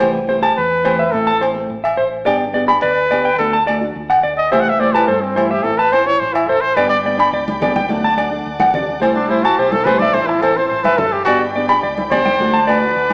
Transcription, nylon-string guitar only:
0.00 E3 A3 G4, muted nylon-string guitar stroke
0.27 E3 A3 C4 G4
0.42 A3 C4 G4
0.83 E3 A3 C4 G4
1.12 E3 A3 C4
1.40 E3 A3 C4
1.54 A3 C4
2.25 B3 D4 G4
2.53 B3 D4 G4
2.68 D4 G4
3.10 B3 D4 G4
3.39 A3 D4 F#4
3.67 A3 D4 F#4
3.81 D4 F#4
4.51 E3 A3 E4 G4
4.79 E3 A3 E4 G4
4.92 A3 E4 G4
5.35 E3 A3 E4 G4
5.62 E3 C4 E4
5.92 E3 C4 E4
6.06 E4
6.76 G3 B3 D4
7.04 G3 B3 D4
7.18 B3 D4
7.60 G3 B3 D4
7.88 F#3 A3 D4
8.17 F#3 A3 D4
8.31 A3 D4
9.00 G3 A3 E4
9.28 G3 A3 E4
9.43 A3 E4
9.86 G3 A3 E4
10.15 E3 C4 E4
10.42 E3 C4 E4
10.56 C4 E4
11.26 B3 D4 G4
11.56 B3 D4 G4
11.69 D4 G4
12.11 B3 D4 G4
12.40 A3 D4 F#4
12.67 A3 D4 F#4
12.83 D4 F#4

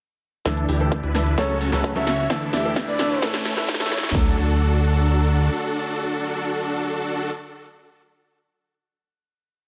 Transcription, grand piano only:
0.45 E3 A3 D4 A4
0.79 E3 A3 D4 A4
1.14 E3 A3 D4 A4
1.37 C#3 F#3 A3 C#4 A4
1.72 C#3 F#3 A3 C#4 A4
1.95 C#3 F#3 A3 C#4 A4
2.29 E3 A3 D4 A4
2.64 E3 A3 D4 A4
2.99 A2 E3 A3 D4 A4
3.22 A2 E3 A3 C#4 A4
3.57 A2 E3 A3 C#4 A4
3.80 A2 E3 A3 C#4 A4
4.13 F#3 A3 D4 A4

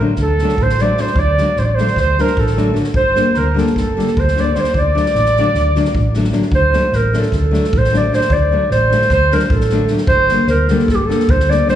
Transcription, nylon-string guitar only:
0.00 D3 F#3 A3 D4
0.42 D3 F#3 A3 D4
0.81 D3 F#3 A3 D4
0.98 D3 F#3 A3 D4
1.38 D3 F#3 A3 D4
1.78 D3 F#3 A3 D4
2.19 D3 F#3 A3 D4
2.57 D3 F#3 A3 D4
2.74 D3 F#3 A3 D4
3.16 D3 G3 A#3 D4
3.54 D3 G3 A#3 D4
3.97 D3 G3 A#3 D4
4.36 D3 G3 A#3 D4
4.55 D3 G3 A#3 D4
4.95 D3 F#3 A3 D4
5.38 D3 F#3 A3 D4
5.76 D3 F#3 A3 D4
6.15 D3 F#3 A3 D4
6.31 D3 F#3 A3 D4
6.73 D3 F#3 A3 D4
7.13 D3 F#3 A3 D4
7.51 D3 F#3 A3 D4
7.92 D3 F#3 A3 D4
8.12 D3 F#3 A3 D4
8.52 D3 F#3 A3 D4
8.90 D3 F#3 A3 D4
9.31 D3 F#3 A3 D4
9.72 D3 F#3 A3 D4
9.90 D3 F#3 A3 D4
10.30 D3 G3 A#3 D4
10.70 D3 G3 A#3 D4
11.08 D3 G3 A#3 D4
11.48 D3 G3 A#3 D4
11.68 D3 G3 A#3 D4

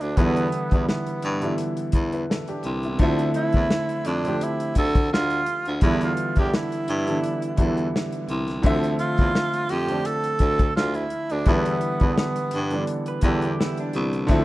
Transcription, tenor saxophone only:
0.01 D4
0.17 B3
0.88 B3
3.36 E4
4.07 D4
4.44 E4
4.79 A4
5.14 F4
5.85 E4
6.04 F4
6.39 G4
6.55 E4
9.00 F4
9.70 G4
10.06 A4
10.76 F4
10.95 E4
11.32 D4
11.48 B3
12.19 B3

